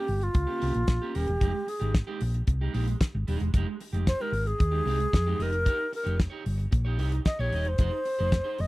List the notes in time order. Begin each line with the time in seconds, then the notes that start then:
Already playing: G4
0.07 G1, muted clean electric guitar stroke, open hi-hat
0.20 F4, muted clean electric guitar stroke, closed hi-hat
0.34 C#2, muted clean electric guitar stroke, kick, closed hi-hat
0.47 A#3 C#4 G4
0.60 C2 A#3 C#4 G4, open hi-hat
0.74 A#1, muted clean electric guitar stroke, closed hi-hat
0.87 A#1, muted clean electric guitar stroke, kick, snare, closed hi-hat
1.02 A#3 C#4 G4
1.14 D#1 A#3 C#4 G4 A#4, open hi-hat
1.28 E1, muted clean electric guitar stroke, closed hi-hat
1.40 F1 G#3 D#4 G4, kick, closed hi-hat
1.53 muted clean electric guitar stroke
1.67 G#4, muted clean electric guitar stroke, open hi-hat
1.80 G#1 G#3 D#4 G4, closed hi-hat
1.93 muted clean electric guitar stroke, kick, snare, closed hi-hat
2.07 G#3 D#4 G4
2.21 A#1, muted clean electric guitar stroke, open hi-hat
2.34 muted clean electric guitar stroke, closed hi-hat
2.47 C2, muted clean electric guitar stroke, kick, closed hi-hat
2.61 G#3 D#4 G4
2.73 A#1 G#3 D#4 G4, open hi-hat
2.87 muted clean electric guitar stroke, closed hi-hat
3.01 kick, snare, closed hi-hat
3.15 G#1, muted clean electric guitar stroke
3.28 D#1 G#3 D#4 G#4, open hi-hat
3.40 E1, muted clean electric guitar stroke, closed hi-hat
3.54 F1 G#3 D#4 G4, kick, closed hi-hat
3.68 muted clean electric guitar stroke
3.81 muted clean electric guitar stroke, open hi-hat
3.93 F1 G#3 D#4 G4, closed hi-hat
4.06 C5, muted clean electric guitar stroke, kick, snare, closed hi-hat
4.20 G#3 D#4 G4 A#4
4.32 G#1, muted clean electric guitar stroke, open hi-hat
4.45 G#4, muted clean electric guitar stroke, closed hi-hat
4.58 D#2, muted clean electric guitar stroke, kick, closed hi-hat
4.71 G#3 D#4 G4
4.85 C2 G#3 D#4 G4, open hi-hat
4.99 muted clean electric guitar stroke, closed hi-hat
5.13 F2, muted clean electric guitar stroke, kick, snare, closed hi-hat
5.26 G#3 D#4 G4
5.39 F1 D#4 G4 A#4 D#5, open hi-hat
5.52 muted clean electric guitar stroke, closed hi-hat
5.65 D#4 G4 C#5, kick, closed hi-hat
5.79 muted clean electric guitar stroke
5.92 A#4, muted clean electric guitar stroke, open hi-hat
6.04 F1 D#4 G4 C#5, closed hi-hat
6.16 muted clean electric guitar stroke, kick, snare, closed hi-hat
6.30 D#4 G4 C#5
6.44 G1, muted clean electric guitar stroke, open hi-hat
6.58 muted clean electric guitar stroke, closed hi-hat
6.71 A#1, muted clean electric guitar stroke, kick, closed hi-hat
6.85 D#4 G4 C#5
6.98 C2 D#4 G4 C#5, open hi-hat
7.12 muted clean electric guitar stroke, closed hi-hat
7.25 D#5, muted clean electric guitar stroke, kick, snare, closed hi-hat
7.39 A#1 D#4 G4 C#5
7.52 D#1 D#4 G4 D#5, open hi-hat
7.65 E1 C5, muted clean electric guitar stroke, closed hi-hat
7.78 F1 D#4 G#4 C5, kick, closed hi-hat
7.92 muted clean electric guitar stroke
8.05 muted clean electric guitar stroke, open hi-hat
8.19 F1 D#4 G#4 C5, closed hi-hat
8.32 muted clean electric guitar stroke, kick, snare, closed hi-hat
8.44 D#4 G#4 C5
8.58 F1 D#5, muted clean electric guitar stroke, open hi-hat